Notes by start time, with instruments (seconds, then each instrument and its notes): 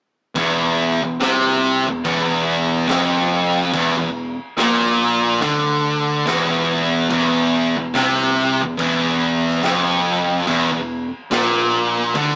0.35 picked electric bass E1, distorted electric guitar E2, kick, crash
1.02 picked electric bass E1, distorted electric guitar E2
1.20 picked electric bass C2, distorted electric guitar C3, snare, crash
1.87 picked electric bass E1, distorted electric guitar E2
2.05 picked electric bass E1, distorted electric guitar E2, kick, crash
2.88 picked electric bass F1, distorted electric guitar F2, snare, crash
3.73 picked electric bass E1, distorted electric guitar E2, kick, crash
3.98 picked electric bass E1, distorted electric guitar E2
4.58 picked electric bass A#1, distorted electric guitar A#2, snare, crash
5.41 picked electric bass D2, distorted electric guitar D3, kick, crash
6.26 picked electric bass E1, distorted electric guitar E2, snare, crash
7.09 picked electric bass E1, distorted electric guitar E2, kick, crash
7.77 picked electric bass E1, distorted electric guitar E2
7.94 picked electric bass C2, distorted electric guitar C3, snare, crash
8.62 picked electric bass E1, distorted electric guitar E2
8.78 picked electric bass E1, distorted electric guitar E2, kick, crash
9.47 snare
9.63 picked electric bass F1, distorted electric guitar F2, snare, crash
10.47 picked electric bass E1, distorted electric guitar E2, kick, crash
10.72 picked electric bass E1, distorted electric guitar E2
11.31 picked electric bass A#1, distorted electric guitar A#2, snare, crash
12.15 picked electric bass D2, distorted electric guitar D3, kick, crash